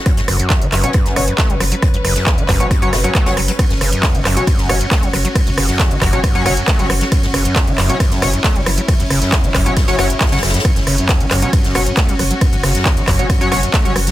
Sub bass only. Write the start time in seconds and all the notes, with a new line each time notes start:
0.18 F#1
0.28 F#1
0.62 F#1
0.72 F#1
1.06 F#1
1.16 F#1
1.50 F#1
1.60 F#1
1.94 F#1
2.05 F#1
2.38 F#1
2.49 F#1
2.82 F#1
2.93 F#1
3.26 F#1
3.37 F#1
3.70 F#1
3.81 F#1
4.14 F#1
4.25 F#1
4.58 F#1
4.69 F#1
5.03 F#1
5.13 F#1
5.47 F#1
5.57 F#1
5.91 F#1
6.02 F#1
6.35 F#1
6.46 F#1
6.79 F#1
6.90 F#1
7.23 F#1
7.34 F#1
7.67 F#1
7.78 F#1
8.11 F#1
8.22 F#1
8.56 F#1
8.66 F#1
9.00 F#1
9.10 F#1
9.44 F#1
9.55 F#1
9.88 F#1
9.99 F#1
10.32 F#1
10.43 F#1
10.76 F#1
10.87 F#1
11.20 F#1
11.31 F#1
11.64 F#1
11.75 F#1
12.09 F#1
12.19 F#1
12.53 F#1
12.63 F#1
12.97 F#1
13.08 F#1
13.41 F#1
13.52 F#1
13.85 F#1
13.96 F#1